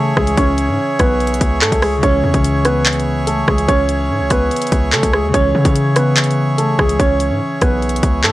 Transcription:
0.00 0.13 C#3 loud
0.00 1.96 C#3 medium
0.00 2.00 E3 medium
0.00 2.04 G#3 medium
0.00 0.14 A3 medium
0.00 2.02 C#4 medium
0.00 8.32 G#4 medium
0.00 0.13 A4 medium
0.00 8.32 C#5 medium
0.00 5.30 E5 medium
0.00 2.00 C#6 medium
0.17 0.37 C#2 loud
0.17 0.35 G#3 medium
0.17 0.34 G#4 medium
0.17 kick loud
0.17 cross-stick loud
0.27 closed hi-hat medium
0.37 0.70 C#2 loud
0.37 0.96 C#4 medium
0.37 0.96 C#5 medium
0.37 kick loud
0.37 closed hi-hat medium
0.58 closed hi-hat medium
0.69 0.78 G#2 loud
0.99 1.39 B1 loud
0.99 1.59 B3 medium
0.99 1.58 B4 medium
0.99 kick medium
0.99 cross-stick loud
0.99 closed hi-hat medium
1.20 closed hi-hat soft
1.27 closed hi-hat medium
1.34 closed hi-hat medium
1.41 1.63 C#2 loud
1.41 kick loud
1.41 closed hi-hat medium
1.62 1.71 G#2 loud
1.62 1.80 A3 medium
1.62 1.79 A4 medium
1.62 clap loud
1.72 2.02 C#2 loud
1.72 kick loud
1.72 closed hi-hat medium
1.82 2.00 G#3 medium
1.82 2.00 G#4 medium
1.82 cross-stick loud
1.82 open hi-hat medium
1.97 5.27 C#3 medium
1.97 5.31 E3 medium
2.03 2.23 C#2 loud
2.03 5.35 G#3 medium
2.03 2.62 C#4 medium
2.03 2.61 C#5 medium
2.03 8.32 C#6 medium
2.03 kick loud
2.03 closed hi-hat medium
2.09 5.33 C#4 medium
2.24 2.34 E2 loud
2.34 3.44 C#2 loud
2.34 kick loud
2.34 closed hi-hat medium
2.44 closed hi-hat medium
2.65 3.24 B3 medium
2.65 3.23 B4 medium
2.65 cross-stick loud
2.65 closed hi-hat medium
2.86 clap loud
2.86 closed hi-hat medium
2.93 closed hi-hat medium
3.00 closed hi-hat medium
3.27 3.45 A3 medium
3.27 3.44 A4 medium
3.27 closed hi-hat medium
3.48 3.68 C#2 loud
3.48 3.66 G#3 medium
3.48 3.65 G#4 medium
3.48 kick loud
3.48 cross-stick loud
3.58 closed hi-hat medium
3.68 4.11 C#2 loud
3.68 4.27 C#4 medium
3.68 4.27 C#5 loud
3.68 kick loud
3.68 closed hi-hat medium
3.89 closed hi-hat medium
4.10 4.22 G#2 loud
4.20 4.30 C#2 loud
4.30 4.50 C#2 loud
4.30 4.89 B3 medium
4.30 4.89 B4 medium
4.30 kick medium
4.30 cross-stick medium
4.30 closed hi-hat medium
4.51 closed hi-hat medium
4.56 closed hi-hat medium
4.62 closed hi-hat medium
4.67 closed hi-hat medium
4.72 4.94 C#2 loud
4.72 kick loud
4.72 closed hi-hat medium
4.93 5.03 C#3 loud
4.93 5.11 A3 medium
4.93 5.10 A4 medium
4.93 clap loud
5.03 5.25 C#2 loud
5.03 kick loud
5.03 closed hi-hat medium
5.13 5.31 G#3 medium
5.13 5.31 G#4 medium
5.13 cross-stick loud
5.24 5.33 D#2 loud
5.28 8.32 C#3 medium
5.28 8.32 E3 medium
5.34 5.54 C#2 loud
5.34 8.32 G#3 medium
5.34 5.93 C#4 medium
5.34 5.92 C#5 loud
5.34 8.32 E5 medium
5.34 kick loud
5.34 closed hi-hat medium
5.40 8.32 C#4 medium
5.55 5.65 C#3 loud
5.65 6.75 C#3 loud
5.65 kick loud
5.65 closed hi-hat medium
5.76 closed hi-hat medium
5.96 6.55 B3 medium
5.96 6.54 B4 medium
5.96 cross-stick loud
5.96 closed hi-hat medium
6.17 clap loud
6.17 closed hi-hat medium
6.24 closed hi-hat medium
6.31 closed hi-hat medium
6.58 6.76 A3 medium
6.58 6.75 A4 medium
6.58 closed hi-hat medium
6.79 6.99 C#2 loud
6.79 6.97 G#3 medium
6.79 6.96 G#4 medium
6.79 kick loud
6.79 cross-stick loud
6.89 closed hi-hat medium
6.99 7.32 C#2 loud
6.99 7.58 C#4 medium
6.99 7.58 C#5 medium
6.99 kick loud
6.99 closed hi-hat medium
7.20 closed hi-hat medium
7.31 7.40 G#2 loud
7.61 8.01 B1 loud
7.61 8.21 B3 medium
7.61 8.20 B4 medium
7.61 kick loud
7.61 cross-stick loud
7.61 closed hi-hat medium
7.82 closed hi-hat soft
7.89 closed hi-hat medium
7.96 closed hi-hat medium
8.03 8.25 C#2 loud
8.03 kick loud
8.03 closed hi-hat medium
8.24 8.32 G#2 loud
8.24 8.32 A3 medium
8.24 8.32 A4 medium
8.24 clap loud

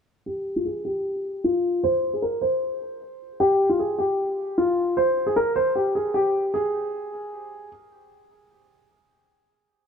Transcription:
0.26 0.54 G4 medium
0.56 0.64 F4 medium
0.65 0.82 G#4 medium
0.85 1.40 G4 medium
1.44 1.81 F4 medium
1.83 2.12 C5 loud
2.14 2.21 G#4 medium
2.22 2.39 A#4 medium
2.41 3.36 C5 medium
3.40 3.68 G4 loud
3.69 3.78 F4 medium
3.79 3.96 G#4 medium
3.98 4.54 G4 medium
4.58 4.95 F4 medium
4.97 5.25 C5 medium
5.27 5.35 G#4 medium
5.36 5.53 A#4 medium
5.56 5.72 C5 medium
5.75 5.92 G4 medium
5.95 6.12 G#4 medium
6.14 6.51 G4 medium
6.54 7.67 G#4 medium

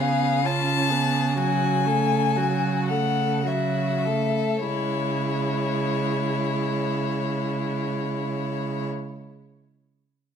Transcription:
0.00 4.35 C#3 soft
0.00 0.43 B3 soft
0.00 0.44 G#4 soft
0.00 0.47 F5 medium
0.44 0.92 C#4 soft
0.44 0.91 F4 soft
0.44 1.39 A5 medium
0.89 1.37 B3 soft
0.89 1.37 G#4 soft
1.38 1.87 F#3 soft
1.38 1.88 F#4 soft
1.38 2.89 G#5 soft
1.86 2.38 A3 soft
1.86 2.38 A4 soft
2.36 2.92 F#3 soft
2.36 2.90 F#4 soft
2.89 3.46 A3 soft
2.89 3.45 A4 soft
2.89 3.48 F#5 soft
3.45 4.09 F#3 soft
3.45 4.07 F#4 soft
3.45 4.66 E5 soft
4.06 4.66 A3 soft
4.06 4.66 A4 soft
4.66 8.86 C#3 soft
4.66 8.86 G#3 soft
4.66 8.86 E4 soft
4.66 8.86 C#5 soft

